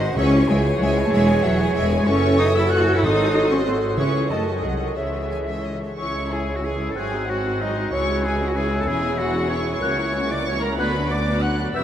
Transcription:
Already playing: G#1 D#3 F#4 C5 D#5
0.00 F#4 C5 F#5
0.15 C#2 C#3 E3 C#4 E4 G#4 C#5 E5 C#6
0.32 E4 C#5 G#5
0.48 C#2 G#3 C#4 G#4 E5 G#5
0.64 E4 C#5 G#5
0.73 F#3 F#5
0.81 C#2 G#3 C#4 G#4 E5 G#5
0.97 E4 C#5 G#5
1.04 A3 A5
1.11 E1 G#3 E4 G#4 E5 G#5
1.28 E4 G#4 C#5 G#5
1.43 E1 F#3 E4 G#4 E5 F#5
1.59 E4 G#4 C#5 G#5
1.74 E1 G#3 E4 G#4 E5 G#5
1.89 E4 G#4 C#5 G#5
2.06 F#1 E3 C#4 E4 F#4 A4 C#5 E5 C#6
2.39 D#4 D#6
2.55 E4 E6
2.70 E3 F#4 A4 C#5 F#6
2.95 E4 E6
3.01 G#1 G#2 F#3 D#4 F#4 A4 C5 D#5 D#6
3.49 C#4 C#6
3.65 F#3 C4 A4 C5 C6
3.97 C#2 C#3 E3 C#4 E4 G#4 C#5 E5 C#6
4.29 F#2 D#3 A3 F#4 A4 D#5 A5
4.53 G#3 G#5
4.62 C2 D#3 F#3 G#4 D#5 F#5
4.96 C#2 C#3 E3 G#4 C#5 E5
5.31 G#5
5.48 E5
5.65 D#5
5.82 C#5
5.97 C#2 E3 C#4 E4 G#4 C#5 C#6 E6
6.14 G#3 E4 C#5
6.31 E3 C#4 G#4 G#5
6.48 G#3 E4 C#5
6.55 F#4 F#5
6.61 E3 C#4 G#4 G#5
6.81 G#3 E4 C#5
6.87 A4 A5
6.91 A4 G#5
6.96 G#1 G#2 F#3 C4 F#4 G#4 F#6
7.12 G#3 D#4 G#4
7.26 F#3 C4 F#4 G#4 F#5
7.45 G#3 D#4 G#4
7.58 F#3 C4 D#4 F#4 G#4 D#5
7.76 G#3 D#4 G#4
7.91 C#2 E3 C#4 E4 G#4 C#5 C#6 E6
8.08 G#3 E4 G#4
8.22 E3 C#4 E4 G#4 G#5
8.39 G#3 E4 G#4
8.47 F#4 F#5
8.54 E3 C#4 E4 G#4 G#5
8.70 G#3 E4 G#4
8.80 A4 A5
8.86 E1 E2 E3 C#4 E4 G#4 G#5
9.02 G#3 E4 G#4
9.18 E3 C#4 E4 F#4 G#4 F#5
9.32 G#3 E4 G#4
9.48 E3 C#4 E4 G#4 C#5 C#6
9.64 G#3 E4 G#4
9.73 C#5 C#6
9.80 C#2 E3 A#3 C#4 E4 F#4 F#6
9.97 F#3 C#4 E4 A#4
10.13 E3 A#3 C#4 F#4
10.29 F#3 C#4 E4 A#4 D5 D6
10.45 E3 A#3 C#4 F#4 C#5 C#6
10.61 F#3 C#4 E4 A#4 A#5
10.77 D2 D3 B3 D4 F#4 B4 B5 F#6
10.93 F#3 D4 B4
11.09 D3 B3 F#4 D5 D6
11.26 F#3 D4 B4
11.42 D3 B3 F#4 F#5 F#6
11.58 F#3 D4 B4
11.74 E1 E2 G3 B3 C#4 E4 E5 E6 G6

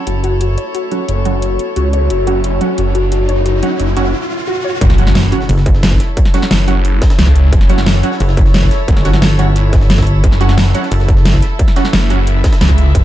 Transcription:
Already playing: E4 F#4 A4 C#5, riser
0.07 F#1 F#4, closed hi-hat
0.24 F#4, closed hi-hat
0.41 F#4, closed hi-hat
0.58 C#5, closed hi-hat
0.75 F#4, closed hi-hat
0.92 F#3 C#4 F#4, closed hi-hat
1.08 F#1 C#5, closed hi-hat
1.25 F#3 C#4 F#4, closed hi-hat
1.42 closed hi-hat
1.59 closed hi-hat
1.76 C#2 F#4, closed hi-hat
1.93 C#5, closed hi-hat
2.10 F#1 F#4, closed hi-hat
2.27 F#3 C#4 F#4, closed hi-hat
2.44 C#5, closed hi-hat
2.61 F#3 C#4 F#4, closed hi-hat
2.78 F#1 F#4, closed hi-hat
2.95 F#4, closed hi-hat
3.12 F#4, closed hi-hat
3.29 F#1 C#5, closed hi-hat
3.46 F#4, closed hi-hat
3.63 F#3 C#4 F#4, closed hi-hat
3.80 F#1 C#5, closed hi-hat
3.97 F#1 F#3 C#4 F#4, closed hi-hat
4.47 F#4
4.64 C#5
4.81 F#1 E4, kick, closed hi-hat, impact
4.88 A4, snare
4.98 F#3 C#4 F#4, closed hi-hat
5.07 snare
5.15 snare, closed hi-hat
5.32 F#3 C#4 F#4, closed hi-hat
5.41 snare
5.49 F#1, closed hi-hat, open hi-hat
5.58 snare
5.66 kick, closed hi-hat
5.75 snare
5.83 snare, closed hi-hat
5.92 kick
6.00 C#5, snare, closed hi-hat
6.17 kick, closed hi-hat
6.25 snare
6.34 F#3 C#4 F#4, snare, closed hi-hat
6.42 snare
6.51 F#1, snare, closed hi-hat
6.68 F#3 C#4 F#4, closed hi-hat
6.85 closed hi-hat
7.02 kick, snare, closed hi-hat
7.10 snare, closed hi-hat
7.19 C#2, snare, closed hi-hat
7.27 kick, snare, closed hi-hat
7.36 closed hi-hat
7.53 F#1, kick, closed hi-hat
7.61 snare
7.69 F#3 C#4 F#4, closed hi-hat
7.78 snare
7.86 snare, closed hi-hat
8.03 F#3 C#4 F#4, closed hi-hat
8.12 snare
8.20 F#1, closed hi-hat, open hi-hat
8.29 snare
8.37 kick, closed hi-hat
8.46 snare
8.54 snare, closed hi-hat
8.63 kick
8.71 snare, closed hi-hat
8.88 G1, kick, closed hi-hat
8.97 snare
9.05 F#3 C#4 F#4, snare, closed hi-hat
9.14 snare
9.22 snare, closed hi-hat
9.39 F#3 C#4 F#4, closed hi-hat
9.56 closed hi-hat
9.73 kick, snare, closed hi-hat
9.81 snare
9.90 snare, closed hi-hat
9.98 kick, snare, closed hi-hat
10.03 snare, closed hi-hat
10.07 closed hi-hat
10.24 F#1, kick, closed hi-hat
10.32 snare
10.41 F#3 C#4 F#4, closed hi-hat
10.49 snare
10.58 snare, closed hi-hat
10.75 F#3 C#4 F#4, closed hi-hat
10.83 snare
10.92 F#1, closed hi-hat, open hi-hat
11.00 snare
11.08 kick, closed hi-hat
11.17 snare
11.25 snare, closed hi-hat
11.34 kick
11.42 E5, snare, closed hi-hat
11.59 kick, closed hi-hat
11.68 snare
11.76 F#3 C#4 F#4, snare, closed hi-hat
11.85 snare
11.93 F#1, snare, closed hi-hat
12.10 F#3 C#4 F#4, closed hi-hat
12.27 closed hi-hat
12.44 kick, snare, closed hi-hat
12.53 snare, closed hi-hat
12.61 C#2, snare, closed hi-hat
12.69 kick, snare, closed hi-hat
12.78 closed hi-hat
12.95 F#1, kick, closed hi-hat

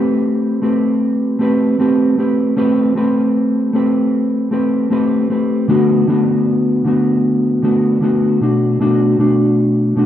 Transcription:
Already playing: A3 C4 G4 B4
0.62 A3 C4 G4 B4
1.39 A3 C4 G4 B4
1.78 A3 C4 G4 B4
2.17 A3 C4 G4 B4
2.56 A3 C4 G4 B4
2.95 A3 C4 G4 B4
3.73 A3 C4 G4 B4
4.51 A3 C4 G4 B4
4.90 A3 C4 G4 B4
5.30 A3 C4 G4 B4
5.68 D3 A3 B3 F#4
6.07 D3 A3 B3 F#4
6.85 D3 A3 B3 F#4
7.62 D3 A3 B3 F#4
8.01 D3 A3 B3 F#4
8.41 B2 A3 D4 F#4
8.80 B2 A3 D4 F#4
9.18 B2 A3 D4 F#4
9.96 B2 A3 D4 F#4

